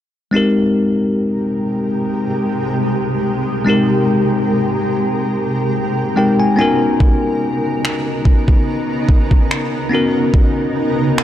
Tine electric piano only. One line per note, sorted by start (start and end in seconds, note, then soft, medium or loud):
0.31 3.62 G#3 medium
0.31 3.63 C4 medium
0.31 3.63 D#4 medium
0.31 3.64 G4 medium
0.36 3.64 A#4 medium
3.65 6.12 G#3 medium
3.65 6.12 C4 medium
3.65 6.13 D#4 medium
3.65 6.14 G4 medium
3.70 6.14 A#4 medium
6.16 6.58 G#3 medium
6.16 6.58 C4 soft
6.16 6.57 D#4 soft
6.16 6.59 G4 soft
6.16 6.59 A#4 medium
6.16 6.38 G5 medium
6.40 6.57 G#5 medium
6.56 9.87 B3 medium
6.56 9.87 C#4 medium
6.56 9.88 D#4 medium
6.56 9.89 F#4 medium
6.56 6.97 G#5 medium
6.61 9.89 A#4 medium
9.89 11.23 B3 medium
9.89 11.23 C#4 medium
9.89 11.23 D#4 medium
9.89 11.23 F#4 medium
9.95 11.23 A#4 medium